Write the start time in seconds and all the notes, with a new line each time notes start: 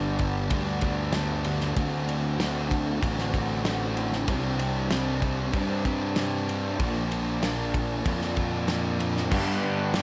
Already playing: G1 G2 D3 G3 B3 D4
0.19 D3 G3, kick, ride
0.50 D2 G2 D3 G3 B3 D4, kick, ride
0.81 D3 G3 B3 D4, kick, ride
1.13 G2 D3 G3 B3 D4, snare, ride
1.44 D3 G3, ride
1.61 snare
1.75 D2 D3 A3 C4 D4, kick, ride
1.79 F#4
2.07 A3 D4, ride
2.38 D3 A3 C4 D4, snare, ride
2.42 F#4
2.69 A3 D4, kick, ride
3.00 A1 D3 A3 C4 D4, kick, ride
3.04 F#4
3.19 snare
3.32 A3 C4 D4 F#4, kick, ride
3.63 D3 A3 D4, snare, ride
3.67 C4 F#4
3.95 A3 D4, ride
4.13 snare
4.26 C2 C3 G3 C4, kick, ride
4.30 D4
4.57 G3 C4, ride
4.89 C3 G3 C4, snare, ride
4.93 D4
5.21 G3 C4, kick, ride
5.53 G2 C3 G3 C4 D4, kick, ride
5.84 G3 C4 D4, kick, ride
6.16 C3 G3 C4 D4, snare, ride
6.48 G3 C4, ride
6.79 A#1 A#2 D3 F3 A#3 D4, kick, ride
7.10 F3 A#3, ride
7.41 A#2 D3 F3 A#3 D4, snare, ride
7.73 F3 A#3, kick, ride
8.05 F2 A#2 D3 F3 A#3 D4, kick, ride
8.21 snare
8.36 F3 A#3 D4, kick, ride
8.67 A#2 D3 F3 A#3 D4, snare, ride
8.99 F3 A#3, ride
9.17 snare
9.30 G2 D3 G3 B3 D4 G4 B4 F#5, kick, crash
9.61 D3 G3
9.93 G2 D3 G3, snare, open hi-hat